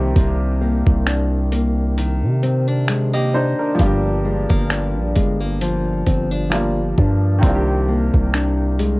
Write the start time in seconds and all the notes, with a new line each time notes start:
Already playing: C2 C3 D#3 A#3 C4 D4 D#4 G4 A#5
0.16 C2 C3, kick, closed hi-hat
0.61 A#3
0.87 C2, kick
1.07 D4, finger snap, closed hi-hat
1.52 A#3, closed hi-hat
1.97 D#3, closed hi-hat
2.22 C3
2.43 C4, closed hi-hat
2.68 D4
2.88 G#3, finger snap, closed hi-hat
3.13 A#3 G4 D#5
3.34 D4 D#4 C5
3.59 D4 A#4
3.75 F3 G3
3.79 G1 G2 A#3 D4, kick, closed hi-hat
3.85 G4
4.25 G#3
4.50 G1 A#3, kick
4.70 D4, finger snap, closed hi-hat
4.95 A#1
5.16 G1 G#3, kick, closed hi-hat
5.40 A#3
5.61 F3, closed hi-hat
6.07 G1 C4, kick, closed hi-hat
6.31 D4
6.50 F3 G3 A#3 D4, finger snap, closed hi-hat
6.55 F4
6.98 G2 D4, kick
7.39 D#3 A#3
7.43 C2 C3 C4 D4, kick, closed hi-hat
7.49 F4
7.55 G4
7.88 A#3
8.14 C2, kick
8.34 D4, finger snap, closed hi-hat
8.79 G#3, closed hi-hat